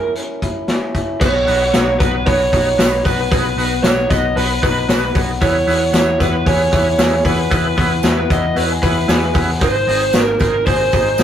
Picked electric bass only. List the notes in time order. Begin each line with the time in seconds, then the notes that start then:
1.21 B1
1.48 B1
1.75 B1
2.00 B1
2.26 B1
2.53 B1
2.79 B1
3.05 B1
3.31 B1
3.57 B1
3.83 B1
4.11 B1
4.36 B1
4.63 B1
4.89 B1
5.15 B1
5.42 E2
5.67 E2
5.93 E2
6.20 E2
6.46 E2
6.73 E2
6.99 E2
7.25 E2
7.51 E2
7.77 E2
8.04 E2
8.30 E2
8.56 E2
8.83 E2
9.08 E2
9.35 E2
9.61 G#1
9.87 G#1
10.14 G#1
10.41 G#1
10.67 G#1
10.93 G#1
11.19 G#1